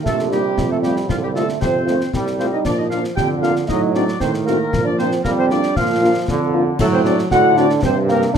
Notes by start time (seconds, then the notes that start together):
0.03 A#1 C3 A3 A4, concert bass drum, snare
0.19 snare
0.30 G3 A#3 D#4 G4 D#5, snare
0.56 F2, concert bass drum, snare
0.70 A3 A4
0.82 G3 A3 C4 F4 G4 D#5, snare
0.97 snare
1.08 C2 D3 F3 F4, concert bass drum, snare
1.22 G3 G4
1.34 A3 C4 F4 A4 D#5, snare
1.49 snare
1.60 F2 C3 C4 C5, concert bass drum, snare
1.86 D#3 A3 C4 F4 D#5, snare
2.01 snare
2.13 C2 G3, concert bass drum, snare
2.27 snare
2.38 A3 C4 F4 C5 D#5, snare
2.52 D#4 D#5
2.64 A#2 F3 D4 D5, concert bass drum, snare, crash
2.78 D#4 D#5
2.90 A#3 D4 F4 D5 F5, snare
3.04 snare
3.16 F2 D3 G4 G5, concert bass drum, snare
3.42 A#3 D4 F4 D5 F5, snare
3.56 snare
3.68 A2 F#3 D#4 D#5, concert bass drum, snare
3.93 C4 D4 D#4 F#4 C5 D5, snare
4.08 snare
4.20 A2 D#3 C4 C5, concert bass drum, snare
4.34 snare
4.45 A#3 C4 D#4 F#4 A#4 C5, snare
4.73 A#2 F3, concert bass drum, snare
4.85 D4 D5
4.98 A#3 C4 D4 F4 C5 D5, snare
5.12 snare
5.24 F2 G3 A#3 A#4, concert bass drum, snare
5.38 C4 C5
5.50 A#3 D4 F4 D5, snare
5.63 snare
5.76 A#2 F3 F4 F5, concert bass drum, snare
6.01 A#3 D4 F4 D5
6.28 F2 D3, concert bass drum, snare
6.53 A#3 D4 F4 D5
6.79 A2 F#3 A3 A4, concert bass drum, snare, crash
6.93 C4 C5
7.05 C4 D4 F#4 D5, snare
7.19 snare
7.31 A2 D3 F#4 F#5, concert bass drum, snare
7.56 C4 D4 F#4 D5, snare
7.70 snare
7.83 G2 C3 C4 C5, concert bass drum, snare
8.08 A#3 D4 G4 A#4 D5, snare
8.22 snare
8.33 D2 D4, concert bass drum, snare